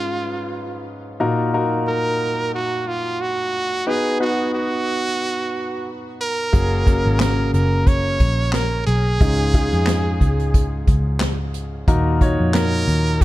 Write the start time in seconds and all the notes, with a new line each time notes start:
Already playing: G#2 C#4 D#4 F4 G#4 B4
1.20 A#2 D#4 F4 F#4 A#4
1.54 D#4 F4 F#4 A#4
1.88 A#4
2.55 F#4
2.88 F4
3.21 F#4
3.87 B3 D#4 F#4 G#4 B4
4.20 B3 D#4 F#4 B4
4.55 F#4
6.21 A#4
6.53 F#1 C#3 A#3 C#4 F#4 G#4, kick, closed hi-hat
6.87 A#3 C#4 F#4 A#4, kick, closed hi-hat
7.05 G#1
7.20 A#4, snare, clap, closed hi-hat
7.54 F#1 A#4, closed hi-hat
7.87 C#5, kick, closed hi-hat
8.20 A#1, kick, closed hi-hat
8.53 A#4, snare, clap, closed hi-hat
8.86 B1 G#4, closed hi-hat
9.21 C#2 G#2 C#4 D#4 F4 G#4, kick, closed hi-hat
9.54 C#4 D#4 F4 G#4, kick, closed hi-hat
9.72 F2, closed hi-hat
9.86 snare, clap, closed hi-hat
10.21 C#2, kick, closed hi-hat
10.39 closed hi-hat
10.54 kick, closed hi-hat
10.87 C#2, kick, closed hi-hat
11.20 snare, clap, closed hi-hat
11.54 closed hi-hat
11.88 D#2 A#2 D#4 F4 F#4 A#4, kick, closed hi-hat
12.21 D#4 F4 F#4 C#5, kick, closed hi-hat
12.40 F2
12.54 A#4, snare, clap, closed hi-hat
12.88 D#2, closed hi-hat
13.06 closed hi-hat
13.21 kick, closed hi-hat